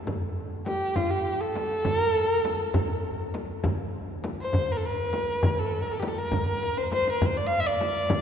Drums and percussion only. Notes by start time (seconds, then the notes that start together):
0.07 frame drum, tombak dum
0.66 tombak tek, frame drum
0.96 frame drum, tombak dum
1.55 tombak tek, frame drum
1.85 frame drum, tombak dum
2.45 tombak tek, frame drum
2.74 frame drum, tombak dum
3.34 tombak tek, frame drum
3.64 frame drum, tombak dum
4.24 tombak tek, frame drum
4.53 frame drum, tombak dum
5.13 tombak tek, frame drum
5.43 frame drum, tombak dum
5.73 tombak ka
6.02 tombak tek, frame drum
6.32 frame drum, tombak dum
6.48 tombak ka
6.63 tombak tek
6.77 tombak ka
6.92 tombak tek, frame drum
7.07 tombak ka
7.22 frame drum, tombak dum
7.81 tombak tek, frame drum
8.10 frame drum, tombak dum